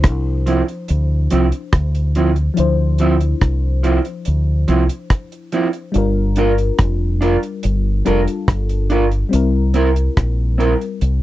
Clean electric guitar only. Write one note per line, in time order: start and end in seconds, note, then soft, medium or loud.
0.46 0.61 F3 medium
0.46 0.61 C4 medium
0.46 0.61 E4 medium
1.31 1.45 F3 medium
1.31 1.45 C4 medium
1.31 1.46 E4 medium
2.16 2.30 F3 medium
2.16 2.30 C4 medium
2.16 2.30 E4 medium
3.00 3.14 F3 medium
3.00 3.14 C4 medium
3.00 3.15 E4 loud
3.83 3.98 F3 medium
3.83 3.98 C4 medium
3.83 3.99 E4 medium
4.68 4.82 F3 medium
4.68 4.83 C4 medium
4.68 4.83 E4 medium
5.53 5.67 F3 medium
5.53 5.67 C4 medium
5.53 5.67 E4 medium
6.37 6.51 D4 medium
6.37 6.52 F4 medium
6.37 6.52 A#4 medium
7.21 7.35 D4 medium
7.21 7.36 F4 medium
7.21 7.36 A#4 medium
8.06 8.20 D4 medium
8.06 8.20 F4 medium
8.06 8.20 A#4 medium
8.90 9.04 D4 medium
8.90 9.05 F4 medium
8.90 9.05 A#4 medium
9.74 9.88 C4 medium
9.74 9.89 E4 medium
9.74 9.89 A#4 medium
10.58 10.72 C4 medium
10.58 10.73 E4 medium
10.58 10.73 A#4 medium